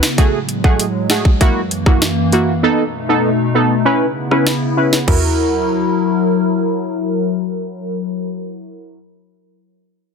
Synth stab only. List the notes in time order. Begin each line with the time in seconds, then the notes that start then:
0.18 A3 F#4 G#4
0.64 A3 F#4 G#4
1.10 A3 F#4 G#4
1.40 A#3 E4 F#4
1.87 A#3 E4 F#4
2.32 A#3 E4 F#4
2.63 B3 D#4 A4
3.09 B3 D#4 A4
3.55 B3 D#4 A4
3.85 C#4 E4 B4
4.31 C#4 E4 B4
4.77 C#4 E4 B4
5.07 E4 F#4 A#4